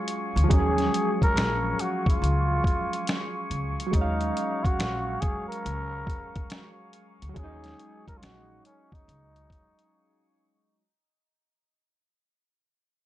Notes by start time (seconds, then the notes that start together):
Already playing: F#3 G#3 C#4 F4 G#4 F5 G#5 C#6
0.08 closed hi-hat
0.36 D2, closed hi-hat
0.44 F3
0.49 D#2 F#3 G#3 G#4, kick, closed hi-hat
0.54 C#4
0.59 G#4
0.78 snare, closed hi-hat
0.94 closed hi-hat
1.22 A#4, kick, closed hi-hat
1.36 A#1, snare, closed hi-hat
1.79 F#4, closed hi-hat
2.06 F4, kick, closed hi-hat
2.22 C#2, closed hi-hat
2.64 kick, closed hi-hat
2.93 closed hi-hat
3.07 snare, closed hi-hat
3.50 C#2, closed hi-hat
3.80 closed hi-hat
3.87 F#3
3.91 D#2 G#3 D#4, kick, closed hi-hat
3.96 C#4
4.01 F5
4.21 closed hi-hat
4.37 closed hi-hat
4.64 F#4, kick, closed hi-hat
4.79 A#1, snare, closed hi-hat
5.21 G#4, kick, closed hi-hat
5.49 A#4, closed hi-hat
5.65 C#2, closed hi-hat
6.07 kick, closed hi-hat
6.36 kick, closed hi-hat
6.50 snare, closed hi-hat
6.93 closed hi-hat
7.22 D2, closed hi-hat
7.29 F#3
7.34 D#2 G#3, kick, closed hi-hat
7.38 C#4 G#4
7.44 D#4
7.64 snare, closed hi-hat
7.79 closed hi-hat
8.08 A#4, kick, closed hi-hat
8.17 F4
8.22 A#1 F#4, snare, closed hi-hat
8.65 C#4, closed hi-hat
8.92 D#4, kick, closed hi-hat
9.08 C#2, closed hi-hat
9.36 closed hi-hat
9.50 kick, closed hi-hat
9.79 closed hi-hat